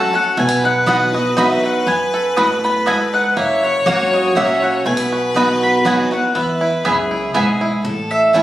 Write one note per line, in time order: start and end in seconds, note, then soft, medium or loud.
0.00 0.12 F#3 loud
0.00 0.13 A3 medium
0.00 0.33 A3 medium
0.00 0.13 C#4 medium
0.00 0.12 F#4 loud
0.00 0.77 F#4 medium
0.00 0.37 A4 medium
0.00 0.39 A4 loud
0.00 0.15 A5 medium
0.13 0.38 C#4 medium
0.13 0.37 C#4 soft
0.13 0.36 F#4 medium
0.13 0.37 F#5 medium
0.37 1.52 B1 medium
0.37 1.33 B2 medium
0.37 0.48 A3 medium
0.37 3.38 B4 loud
0.37 0.63 G#5 loud
0.48 0.86 B3 medium
0.64 1.33 D#4 medium
0.64 0.87 F#5 medium
0.86 1.12 F#3 medium
0.86 0.97 B3 medium
0.86 1.13 B3 medium
0.86 1.58 B3 medium
0.86 1.13 D#4 medium
0.86 0.97 F#4 medium
0.86 1.12 F#4 loud
0.86 0.97 D#5 loud
0.86 1.15 F#5 medium
0.86 0.97 B5 medium
1.13 1.37 D#4 medium
1.13 1.36 F#4 medium
1.13 2.37 F#4 medium
1.13 1.38 D#5 medium
1.37 1.85 F#3 medium
1.37 1.47 B3 medium
1.37 1.85 B3 medium
1.37 2.08 D#4 medium
1.37 1.85 D#4 loud
1.37 1.47 F#4 medium
1.37 1.86 F#4 loud
1.37 1.47 D#5 loud
1.37 1.65 E5 medium
1.37 1.47 B5 loud
1.64 3.04 F#3 medium
1.64 1.87 F#5 medium
1.87 2.82 F#2 medium
1.87 3.02 F#2 medium
1.87 2.58 B3 medium
1.87 2.64 G#5 loud
2.14 2.82 A4 medium
2.37 2.85 A2 medium
2.37 2.46 B3 loud
2.37 2.47 F#4 medium
2.37 3.63 F#4 medium
2.37 2.47 D#5 medium
2.37 2.47 B5 loud
2.64 3.33 B3 medium
2.64 2.87 B5 loud
2.86 3.35 G#2 medium
2.86 2.96 B3 medium
2.86 2.96 F#4 medium
2.86 3.37 A4 medium
2.86 2.96 D#5 medium
2.86 3.14 G#5 medium
2.86 2.96 B5 loud
3.14 3.37 D#4 medium
3.14 3.36 F#5 medium
3.37 3.75 F#1 medium
3.37 4.32 F#2 medium
3.37 3.85 A#3 medium
3.37 4.87 C#5 loud
3.37 3.62 E5 medium
3.63 4.12 F#4 medium
3.63 3.87 C#5 medium
3.86 4.29 G#1 medium
3.86 4.34 F#3 medium
3.86 3.96 A#3 loud
3.86 4.35 A#3 medium
3.86 4.34 A#3 medium
3.86 4.35 C#4 medium
3.86 3.96 F#4 medium
3.86 4.35 F#4 medium
3.86 3.96 C#5 loud
3.86 4.14 C#5 medium
3.86 3.96 F#5 medium
4.13 4.61 F#4 medium
4.13 4.38 D#5 medium
4.35 4.78 A#1 medium
4.35 4.83 F#3 medium
4.35 4.46 A#3 medium
4.35 4.84 A#3 medium
4.35 4.85 A#3 medium
4.35 4.84 C#4 loud
4.35 4.46 F#4 loud
4.35 4.84 F#4 medium
4.35 4.46 C#5 loud
4.35 4.61 E5 medium
4.35 4.46 F#5 loud
4.62 4.86 F#4 medium
4.62 4.85 F#5 medium
4.85 6.00 B1 medium
4.85 5.81 B2 medium
4.85 4.97 A3 medium
4.85 6.35 B4 loud
4.85 5.58 G#5 loud
4.97 5.35 B3 medium
5.12 5.61 F#4 medium
5.35 5.83 F#3 medium
5.35 5.83 B3 medium
5.35 5.45 B3 medium
5.35 5.85 B3 medium
5.35 5.84 D#4 loud
5.35 5.46 F#4 loud
5.35 5.84 F#4 loud
5.35 5.46 D#5 loud
5.35 5.46 B5 loud
5.62 6.11 F#4 medium
5.62 5.87 B5 loud
5.85 6.10 F#3 medium
5.85 5.95 B3 medium
5.85 6.11 B3 medium
5.85 6.34 B3 medium
5.85 6.11 D#4 loud
5.85 5.95 F#4 medium
5.85 6.10 F#4 loud
5.85 5.95 D#5 medium
5.85 6.13 G#5 medium
5.85 5.95 B5 loud
6.11 6.35 D#4 medium
6.11 6.34 F#4 medium
6.11 6.35 F#4 medium
6.11 6.37 F#5 medium
6.35 6.84 E2 medium
6.35 6.74 E2 medium
6.35 6.84 B3 medium
6.35 6.86 B4 medium
6.35 7.31 E5 medium
6.61 7.10 E4 medium
6.85 7.28 C#2 medium
6.85 7.32 F#2 medium
6.85 6.94 B3 loud
6.85 7.33 B3 medium
6.85 6.95 E4 medium
6.85 7.33 G#4 medium
6.85 6.95 B4 medium
6.85 6.95 G#5 loud
7.11 7.60 E4 medium
7.34 7.77 B1 medium
7.34 7.82 G#2 loud
7.34 7.84 B3 medium
7.34 7.44 B3 loud
7.34 7.44 E4 medium
7.34 7.81 G#4 medium
7.34 7.45 B4 loud
7.34 7.45 G#5 medium
7.61 7.85 E4 medium
7.84 8.43 A1 medium
7.84 8.43 A2 medium
7.84 8.43 A4 medium
8.11 8.43 E5 loud
8.33 8.43 E3 medium
8.33 8.43 A3 medium
8.33 8.43 C#4 medium
8.33 8.43 E4 loud
8.33 8.43 E4 medium
8.33 8.43 E4 loud
8.33 8.43 C#5 loud
8.33 8.43 A5 loud